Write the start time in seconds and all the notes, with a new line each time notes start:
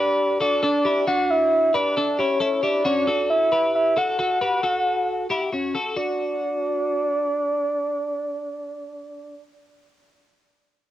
Already playing: G4 B4 D5
0.41 F#4 A4 D5
0.63 D4 A4 D5
0.85 E4 G4
1.07 D4 F#4 F#5
1.30 E5
1.74 G4 B4 D5
1.97 D4 A4
2.19 E4 G4 C#5
2.40 E4 A4
2.63 E4 G4 D5
2.85 C#4 F#4
3.07 F#4 A4
3.30 E5
3.52 G4 B4
3.75 E5
3.97 F#4 A4 F#5
4.19 F#4 A4
4.41 G4 B4
4.63 F#4 A4
5.30 E4 G4
5.52 C#4 F#4
5.75 F#4 A4
5.96 F#4 D5